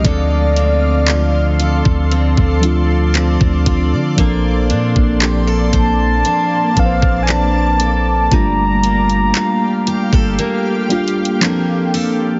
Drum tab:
HH |x-----x-----x-----x-----x-----x-----x-----x-----|x-----x-----x-----x-----x-----x-----x-----x-----|x-----x--x--x-----x-----x-----x-x-x-x-----o-----|
CP |------------x-----------------------x-----------|------------x-----------------------x-----------|------------x-----------------------x-----------|
BD |o--------------------o-----o-----------o--o-----|o--------o--------o-----------o--o--------------|o--------------------o--------------------------|